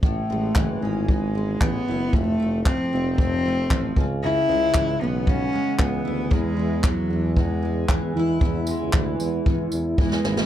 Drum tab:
TB |----------------|----------------|----------------|----------------|
CP |----x-------x---|----x-------x---|----x-------x---|----x-------x---|
SD |----------------|----------------|----------------|----------------|
BD |o---o---o---o---|o---o---o---o-o-|----o---o---o---|o---o---o---o---|

TB |--x---x---x-----|
CP |----x-----------|
SD |-------------ooo|
BD |o---o---o---o---|